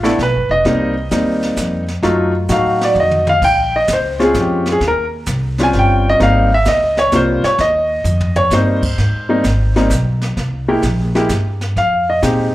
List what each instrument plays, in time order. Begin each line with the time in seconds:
Already playing: upright bass A1
0.03 grand piano A3 B3 D4 E4 A4, snare
0.19 upright bass B1, kick, snare
0.23 grand piano B4
0.34 upright bass G1
0.49 upright bass F1, grand piano D#5
0.65 upright bass C2, grand piano G3 A#3 C4 D#4, brush sweep, kick, snare
1.11 upright bass D#2, grand piano G3 A#3 C4 D#4, kick, snare, hi-hat pedal
1.43 snare
1.57 upright bass F2, kick, snare, hi-hat pedal
1.88 snare
2.03 upright bass F#2, grand piano F#3 A3 D#4 F4, brush sweep, kick, snare
2.49 upright bass A2, grand piano F#3 A3 D#4 F#4 F5, kick, snare, hi-hat pedal
2.81 grand piano D5, snare
2.95 upright bass F2, mid tom
3.00 grand piano D#5
3.11 mid tom
3.27 grand piano F5, mid tom
3.42 upright bass A#1, grand piano G5, brush sweep, kick, snare, crash
3.76 grand piano D#5
3.88 upright bass C#2, kick, snare, hi-hat pedal
3.93 grand piano C5
4.19 grand piano G#3 C4 C#4 F4, snare
4.24 grand piano G#4
4.34 upright bass F2, kick, snare, hi-hat pedal
4.41 grand piano G4
4.66 snare
4.72 grand piano G#4
4.80 upright bass D#2, brush sweep, kick, snare
4.88 grand piano A#4
5.26 upright bass C2, kick, snare, hi-hat pedal
5.58 grand piano G3 C4 C#4 F4, snare
5.63 grand piano G#5
5.73 upright bass G1, kick, snare
5.79 grand piano G5
6.09 grand piano D#5
6.20 upright bass G#1, grand piano G3 A#3 C4 D#4 F5, brush sweep, kick, snare
6.54 grand piano E5
6.65 upright bass C#2, grand piano D#5, kick, snare, hi-hat pedal
6.97 grand piano C#5, snare
7.12 upright bass C2, grand piano G3 A#3 C4 F4, kick, snare, hi-hat pedal
7.16 grand piano C5
7.43 grand piano C#5, muted upright bass stroke, snare
7.58 upright bass D#2, grand piano D#5, brush sweep, kick, snare
8.04 upright bass F2, hi-hat pedal, mid tom
8.21 floor tom
8.36 grand piano C#5, floor tom
8.50 upright bass G2, grand piano G3 A#3 C4 D#4 C5, snare, hi-hat pedal
8.83 kick, crash
8.98 upright bass G#2, brush sweep, kick, snare
9.29 grand piano G3 A#3 C4 D#4
9.44 upright bass G#1, kick, snare, hi-hat pedal
9.76 grand piano G3 A#3 C4 D#4, snare
9.90 upright bass B1, kick, snare, hi-hat pedal
10.22 snare
10.37 upright bass C2, brush sweep, kick, snare
10.68 grand piano G#3 A#3 E4 G4
10.83 upright bass A#1, kick, snare, hi-hat pedal
11.15 grand piano G#3 A#3 E4 G4, snare
11.29 upright bass G2, kick, snare, hi-hat pedal
11.61 snare
11.76 upright bass F2, grand piano F5, brush sweep, kick, snare
12.10 grand piano D#5
12.22 upright bass A#2, grand piano G#3 C4 D#4 G4, kick, snare, hi-hat pedal